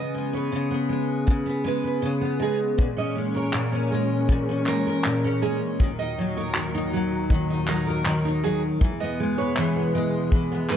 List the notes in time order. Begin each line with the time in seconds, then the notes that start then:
Already playing: C#3 G#3 B3 D#5
0.15 G#3
0.33 B4 C#5
0.52 C#3
0.71 B3
0.89 G#3
1.27 C#3, kick
1.46 B3
1.64 G#3 B4
1.84 B4
2.02 C#3
2.21 B3
2.40 G#3 G#4
2.78 A#2 E3 G#3 C#4, kick
2.97 C#4 D#5
3.15 G#3
3.34 A#4 C#5
3.53 A#2, clap
3.73 C#4
3.92 G#3
4.29 A#2, kick
4.49 C#4
4.66 G#3 A#4, clap
4.87 A#4
5.04 A#2, clap
5.24 C#4
5.42 G#3 G#4
5.79 D#2 D#3 F#3, kick
5.99 D#4 D#5
6.18 F#3
6.37 A#4 C#5
6.55 D#3, clap
6.75 D#4
6.93 F#3
7.30 D#3, kick
7.50 D#4
7.68 F#3 A#4, clap
7.87 A#4
8.06 D#3, clap
8.25 D#4
8.44 F#3 G#4
8.81 E2 B2 E3 G#3, kick
9.00 B3 D#5
9.20 G#3
9.38 B4 C#5
9.57 E3, clap
9.76 B3
9.95 G#3
10.32 E3, kick
10.52 B3
10.70 G#3 B4, clap